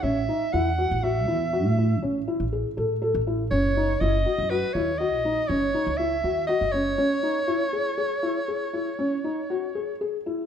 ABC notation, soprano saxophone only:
X:1
M:7/4
L:1/8
Q:1/4=121
K:C#m
V:1 name="Soprano saxophone"
e2 f2 e4 z6 | c2 d2 B c d2 c2 e2 d c- | c12 z2 |]